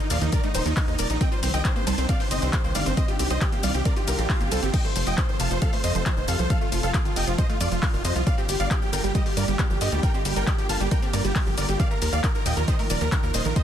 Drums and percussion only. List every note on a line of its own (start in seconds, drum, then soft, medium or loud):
0.10 open hi-hat loud
0.10 ride medium
0.10 shaker medium
0.21 closed hi-hat medium
0.21 shaker soft
0.32 kick loud
0.32 closed hi-hat medium
0.32 ride medium
0.32 shaker soft
0.43 closed hi-hat soft
0.43 shaker soft
0.55 open hi-hat loud
0.55 ride medium
0.55 shaker medium
0.66 closed hi-hat medium
0.66 shaker soft
0.77 kick loud
0.77 clap loud
0.77 open hi-hat medium
0.77 ride medium
0.77 shaker soft
0.88 shaker soft
0.99 open hi-hat loud
0.99 ride medium
0.99 shaker medium
1.10 closed hi-hat medium
1.10 shaker soft
1.21 kick loud
1.21 closed hi-hat medium
1.21 ride medium
1.21 shaker soft
1.32 shaker soft
1.43 open hi-hat loud
1.43 ride medium
1.43 shaker medium
1.54 closed hi-hat medium
1.54 shaker soft
1.65 kick loud
1.65 clap loud
1.65 closed hi-hat medium
1.65 ride medium
1.65 shaker soft
1.76 shaker soft
1.87 open hi-hat loud
1.87 ride medium
1.87 shaker medium
1.98 closed hi-hat medium
1.98 shaker soft
2.09 kick loud
2.09 closed hi-hat medium
2.09 ride medium
2.09 shaker soft
2.20 open hi-hat medium
2.20 shaker soft
2.31 open hi-hat loud
2.31 ride medium
2.31 shaker medium
2.42 closed hi-hat medium
2.42 shaker soft
2.53 kick loud
2.53 clap loud
2.53 closed hi-hat medium
2.53 ride medium
2.53 shaker soft
2.64 shaker soft
2.75 open hi-hat loud
2.75 ride medium
2.75 shaker medium
2.86 closed hi-hat medium
2.86 shaker soft
2.97 kick loud
2.97 closed hi-hat medium
2.97 ride medium
2.97 shaker soft
3.08 closed hi-hat soft
3.08 shaker soft
3.19 open hi-hat loud
3.19 ride medium
3.19 shaker medium
3.30 closed hi-hat medium
3.30 shaker soft
3.41 kick loud
3.41 clap loud
3.41 closed hi-hat medium
3.41 ride medium
3.41 shaker soft
3.52 closed hi-hat soft
3.52 shaker soft
3.63 open hi-hat loud
3.63 ride medium
3.63 shaker medium
3.74 closed hi-hat medium
3.74 shaker soft
3.85 kick loud
3.85 closed hi-hat medium
3.85 ride medium
3.85 shaker soft
3.97 closed hi-hat soft
3.97 shaker soft
4.08 open hi-hat loud
4.08 ride medium
4.08 shaker medium
4.19 closed hi-hat medium
4.19 shaker soft
4.30 kick loud
4.30 clap loud
4.30 open hi-hat medium
4.30 ride medium
4.30 shaker soft
4.41 closed hi-hat soft
4.41 shaker soft
4.52 open hi-hat loud
4.52 ride medium
4.52 shaker medium
4.63 closed hi-hat medium
4.63 shaker soft
4.74 kick loud
4.74 closed hi-hat medium
4.74 crash medium
4.74 ride medium
4.74 shaker soft
4.85 shaker soft
4.96 open hi-hat loud
4.96 ride medium
4.96 shaker medium
5.07 closed hi-hat medium
5.07 shaker soft
5.18 kick loud
5.18 clap loud
5.18 closed hi-hat medium
5.18 ride medium
5.18 shaker soft
5.29 shaker soft
5.40 open hi-hat loud
5.40 ride medium
5.40 shaker medium
5.51 closed hi-hat medium
5.51 shaker soft
5.62 kick loud
5.62 closed hi-hat medium
5.62 ride medium
5.62 shaker soft
5.73 open hi-hat medium
5.73 shaker soft
5.84 open hi-hat loud
5.84 ride medium
5.84 shaker medium
5.95 closed hi-hat medium
5.95 shaker soft
6.06 kick loud
6.06 clap loud
6.06 closed hi-hat medium
6.06 ride medium
6.06 shaker soft
6.17 shaker soft
6.28 open hi-hat loud
6.28 ride medium
6.28 shaker medium
6.39 closed hi-hat medium
6.39 shaker soft
6.50 kick loud
6.50 closed hi-hat medium
6.50 ride medium
6.50 shaker soft
6.61 shaker soft
6.72 open hi-hat loud
6.72 ride medium
6.72 shaker medium
6.83 closed hi-hat medium
6.83 shaker soft
6.94 kick loud
6.94 clap loud
6.94 closed hi-hat medium
6.94 ride medium
6.94 shaker soft
7.05 closed hi-hat soft
7.05 shaker soft
7.16 open hi-hat loud
7.16 ride medium
7.16 shaker medium
7.27 closed hi-hat medium
7.27 shaker soft
7.38 kick loud
7.38 closed hi-hat medium
7.38 ride medium
7.38 shaker soft
7.50 closed hi-hat soft
7.50 shaker soft
7.61 open hi-hat loud
7.61 ride medium
7.61 shaker medium
7.72 closed hi-hat medium
7.72 shaker soft
7.83 kick loud
7.83 clap loud
7.83 open hi-hat medium
7.83 ride medium
7.83 shaker soft
7.94 shaker soft
8.05 open hi-hat loud
8.05 ride medium
8.05 shaker medium
8.16 closed hi-hat medium
8.16 shaker soft
8.27 kick loud
8.27 closed hi-hat medium
8.27 ride medium
8.27 shaker soft
8.38 shaker soft
8.49 open hi-hat loud
8.49 ride medium
8.49 shaker medium
8.60 closed hi-hat medium
8.60 shaker soft
8.71 kick loud
8.71 clap loud
8.71 closed hi-hat medium
8.71 ride medium
8.71 shaker soft
8.82 shaker soft
8.93 open hi-hat loud
8.93 ride medium
8.93 shaker medium
9.04 closed hi-hat medium
9.04 shaker soft
9.15 kick loud
9.15 closed hi-hat medium
9.15 ride medium
9.15 shaker soft
9.26 open hi-hat medium
9.26 shaker soft
9.37 open hi-hat loud
9.37 ride medium
9.37 shaker medium
9.48 closed hi-hat medium
9.48 shaker soft
9.59 kick loud
9.59 clap loud
9.59 closed hi-hat medium
9.59 ride medium
9.59 shaker soft
9.70 shaker soft
9.81 open hi-hat loud
9.81 ride medium
9.81 shaker medium
9.92 closed hi-hat medium
9.92 shaker soft
10.03 kick loud
10.03 closed hi-hat medium
10.03 ride medium
10.03 shaker soft
10.14 shaker soft
10.25 open hi-hat loud
10.25 ride medium
10.25 shaker medium
10.36 closed hi-hat medium
10.36 shaker soft
10.47 kick loud
10.47 clap loud
10.47 closed hi-hat medium
10.47 ride medium
10.47 shaker soft
10.58 closed hi-hat soft
10.58 shaker soft
10.69 open hi-hat loud
10.69 ride medium
10.69 shaker medium
10.81 closed hi-hat soft
10.81 shaker soft
10.91 kick loud
10.91 closed hi-hat medium
10.91 ride medium
10.91 shaker soft
11.02 closed hi-hat soft
11.02 shaker soft
11.13 open hi-hat loud
11.13 ride medium
11.13 shaker medium
11.25 closed hi-hat medium
11.25 shaker soft
11.36 kick loud
11.36 clap loud
11.36 open hi-hat medium
11.36 ride medium
11.36 shaker soft
11.47 shaker soft
11.58 open hi-hat loud
11.58 ride medium
11.58 shaker medium
11.69 closed hi-hat medium
11.69 shaker soft
11.80 kick loud
11.80 closed hi-hat medium
11.80 ride medium
11.80 shaker soft
11.91 shaker soft
12.02 open hi-hat loud
12.02 ride medium
12.02 shaker medium
12.13 closed hi-hat medium
12.13 shaker soft
12.24 kick loud
12.24 clap loud
12.24 closed hi-hat medium
12.24 ride medium
12.24 shaker soft
12.35 shaker soft
12.46 open hi-hat loud
12.46 ride medium
12.46 shaker medium
12.57 closed hi-hat soft
12.57 shaker soft
12.68 kick loud
12.68 closed hi-hat medium
12.68 ride medium
12.68 shaker soft
12.79 open hi-hat medium
12.79 shaker soft
12.90 open hi-hat loud
12.90 ride medium
12.90 shaker medium
13.01 closed hi-hat medium
13.01 shaker soft
13.12 kick loud
13.12 clap loud
13.12 closed hi-hat medium
13.12 ride medium
13.12 shaker soft
13.23 shaker soft
13.34 open hi-hat loud
13.34 ride medium
13.34 shaker medium
13.45 closed hi-hat soft
13.45 shaker soft
13.56 kick loud
13.56 closed hi-hat medium
13.56 ride medium
13.56 shaker soft